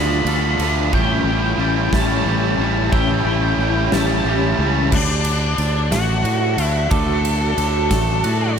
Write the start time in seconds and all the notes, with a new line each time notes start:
Already playing: D2 D3 F3 A3 B3 D4 F4 D5 B5 F6
0.25 D2 D3 F3 A4 F6, ride
0.29 A3 D4 F4
0.59 D2 D3 F3 A3 F4, ride
0.63 D4
0.93 A1 A2 E3 G3 A3 C#4 E4 G4 C#5 G5 A5 G6, kick
1.24 A1 A2 E3 G3 A3
1.28 C#4 E4
1.58 A1 A2 E3 G3 A3 C#4 A6
1.62 E4
1.92 A1 A2 E3 G3 A3 C#4 E4 A5, kick, snare
2.26 A1 A2 E3 G3 A3 C#4 E4 G4 G6
2.58 A1 A2 E3 G3 A3 C#4 E4
2.92 A1 A2 E3 G3 A3 C#4 E4 G5 E6, kick
3.25 A1 A2 E3 G3 A3 C#4 E4
3.58 A1 A2 E3 G3 A3 C#4 E4 G6
3.92 A1 A2 E3 G3 A3 C#4 E4 A5, snare
4.25 A1 A2 E3 G3 A3 C#4 E4 G4 G6
4.59 C#2 A2 E3 G3 A3 C#4 E4
4.90 D2 D3 F#4 D5 A5 F#6, kick, crash
4.94 D4
5.25 ride
5.58 D2 D3 A6, ride
5.91 A1 A3 F#4, snare, ride
6.24 A2 F#4 F#6, ride
6.57 D2 A3, ride
6.64 E4
6.91 D2 D3 A4 D6, kick, ride
7.25 ride
7.58 D2 D3 F#6, ride
7.91 A1 A3, kick, snare, ride
8.24 A2 F#4 F#6, ride